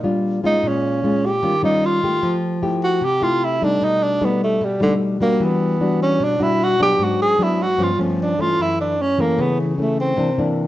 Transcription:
Already playing: nylon-string guitar A#2
0.04 nylon-string guitar G3 D4 F4
0.43 nylon-string guitar G#3 C#4 F4, tenor saxophone D#4
0.63 nylon-string guitar A#2
0.68 tenor saxophone C#4
1.04 nylon-string guitar G#3 C#4 F4
1.26 tenor saxophone G4
1.43 nylon-string guitar D#3 G3 C#4 F4
1.63 nylon-string guitar G3 C#4 F4, tenor saxophone D#4
1.85 tenor saxophone F4
2.03 nylon-string guitar A3 G4
2.23 nylon-string guitar F3
2.62 nylon-string guitar A3 E4 G4
2.84 tenor saxophone F#4
3.01 nylon-string guitar C3, tenor saxophone G4
3.21 nylon-string guitar A3 E4 G4, tenor saxophone F4
3.45 tenor saxophone E4
3.62 nylon-string guitar G3 A3 D#4, tenor saxophone D4
3.82 nylon-string guitar B2, tenor saxophone D#4
4.03 tenor saxophone D4
4.21 nylon-string guitar G3 A3 D#4, tenor saxophone B3
4.44 tenor saxophone A3
4.61 nylon-string guitar B2, tenor saxophone G3
4.80 tenor saxophone D3, nylon-string guitar G3 A3 D#4
5.20 nylon-string guitar G3 D4 F#4, tenor saxophone A#3
5.40 nylon-string guitar E3
5.45 tenor saxophone B3
5.81 nylon-string guitar G3 D4 F#4
6.03 tenor saxophone C#4
6.20 nylon-string guitar B2
6.24 tenor saxophone D4
6.39 nylon-string guitar G3 D4 F#4, tenor saxophone E4
6.64 tenor saxophone F#4
6.79 nylon-string guitar F#3 B3 D4, tenor saxophone G4
6.99 nylon-string guitar G#2
7.04 tenor saxophone F#4
7.22 tenor saxophone G#4
7.39 nylon-string guitar F#3 B3 D4
7.43 tenor saxophone E4
7.62 tenor saxophone F#4
7.78 nylon-string guitar G2 F3 B3 C#4
7.83 tenor saxophone F4
7.99 nylon-string guitar F3 B3 C#4, tenor saxophone A3
8.22 tenor saxophone D4
8.38 nylon-string guitar E3 A3 C#4, tenor saxophone F4
8.59 nylon-string guitar F#2, tenor saxophone E4
8.81 tenor saxophone D4
9.02 tenor saxophone C#4
9.18 nylon-string guitar E3 A3 C#4, tenor saxophone A#3
9.38 nylon-string guitar C#3, tenor saxophone B3
9.61 tenor saxophone E3
9.78 nylon-string guitar E3 A3 C#4
9.82 tenor saxophone A3
10.00 tenor saxophone C4
10.17 nylon-string guitar C3 E3 A#3 D4
10.38 nylon-string guitar E3 A#3 D4

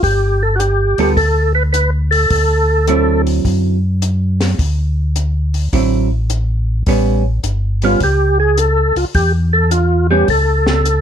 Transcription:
0.03 tonewheel organ G1 G4, kick, open hi-hat
0.43 tonewheel organ A4
0.56 tonewheel organ F#4 G4
0.60 closed hi-hat
0.98 tonewheel organ D2, hollow-body jazz guitar G3 B3 F4 A4, open hi-hat
1.16 tonewheel organ D2 A4, kick, open hi-hat
1.55 tonewheel organ B4
1.73 tonewheel organ B4, closed hi-hat
2.11 tonewheel organ A4, open hi-hat
2.30 tonewheel organ D2, kick, open hi-hat
2.87 hollow-body jazz guitar D3 F#3 C4 E4, closed hi-hat
3.27 open hi-hat
3.45 tonewheel organ F#2, kick, open hi-hat
4.02 closed hi-hat
4.41 snare, open hi-hat
4.58 tonewheel organ D2, kick, open hi-hat
5.16 closed hi-hat
5.54 open hi-hat
5.73 tonewheel organ A1, hollow-body jazz guitar D3 F#3 C4 E4, kick, open hi-hat
6.30 closed hi-hat
6.86 tonewheel organ A1, hollow-body jazz guitar G3 B3 C#4, kick, open hi-hat
7.43 tonewheel organ G1, closed hi-hat
7.82 hollow-body jazz guitar G3 B3 C#4, tonewheel organ F4, open hi-hat
8.00 tonewheel organ C#2 G4, kick, open hi-hat
8.40 tonewheel organ G#4
8.57 tonewheel organ A4, closed hi-hat
8.96 tonewheel organ C#2 F4, open hi-hat
9.14 tonewheel organ E2 G4, kick, open hi-hat
9.53 tonewheel organ A4
9.71 tonewheel organ F4, closed hi-hat
10.11 hollow-body jazz guitar G3 B3 C#4, tonewheel organ G4
10.28 tonewheel organ C#2 A4, kick, open hi-hat
10.67 snare
10.85 closed hi-hat

